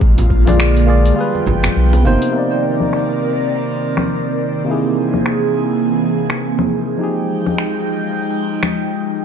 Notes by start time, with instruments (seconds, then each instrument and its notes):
Already playing: analog synth pad G#3
0.01 analog synth bass A#1, analog synth pad D3 A#3 F4, kick, shaker
0.18 open hi-hat, low conga, shaker
0.30 kick, shaker
0.45 tine electric piano A#3 F4 G#4 D5, open hi-hat, high conga, low conga, shaker
0.60 finger snap, shaker
0.77 open hi-hat, shaker
0.86 tine electric piano A#3 F4 G#4 D5, shaker
1.06 open hi-hat, shaker
1.13 tine electric piano G3 F4, analog synth pad B3
1.18 analog synth pad F3 G5, tine electric piano G#4 B4, shaker
1.35 high conga, shaker
1.46 analog synth bass G1, kick, low conga, shaker
1.63 finger snap, open hi-hat, low conga, shaker
1.76 analog synth bass B1, shaker
1.93 open hi-hat, low conga, shaker
2.03 analog synth bass G1, tine electric piano C3 A#3 D#4 C5, high conga, shaker
2.22 open hi-hat, shaker
2.31 tine electric piano C3 A#3, analog synth pad D#3 C4 A#4 D5
2.35 tine electric piano D#4 D5
2.80 low conga
2.93 finger snap
3.97 finger snap, low conga
4.64 tine electric piano C3 A#3 D#4, analog synth pad E3 A#3 G#4
4.70 tine electric piano E4 G#4
5.14 low conga
5.26 finger snap
6.30 finger snap
6.59 low conga
6.97 tine electric piano F3 D#4, analog synth pad F3 G#3 D#4 G5
7.01 tine electric piano G4 G#4
7.46 low conga
7.58 finger snap
8.63 finger snap, low conga